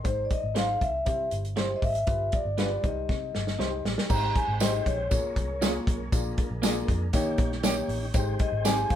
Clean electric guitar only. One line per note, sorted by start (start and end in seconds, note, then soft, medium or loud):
0.55 0.65 D#4 medium
0.55 0.66 G#4 medium
0.55 0.66 C5 medium
1.56 1.66 E4 medium
1.56 1.67 G4 medium
1.56 1.67 C5 medium
2.58 2.68 D4 medium
2.58 2.68 F4 medium
2.58 2.69 B4 medium
3.59 3.69 D#4 medium
3.59 3.69 G4 medium
3.59 3.70 C5 medium
4.60 4.71 D#4 medium
4.60 4.71 G4 loud
4.60 4.71 C5 loud
5.61 5.71 C#4 medium
5.61 5.72 F4 medium
5.61 5.72 G#4 medium
6.62 6.72 A#3 medium
6.62 6.73 D4 medium
6.62 6.73 G#4 loud
7.63 7.73 A#3 medium
7.63 7.74 C#4 medium
7.63 7.74 G4 medium
8.65 8.75 C4 medium
8.65 8.75 D#4 loud
8.65 8.75 G4 loud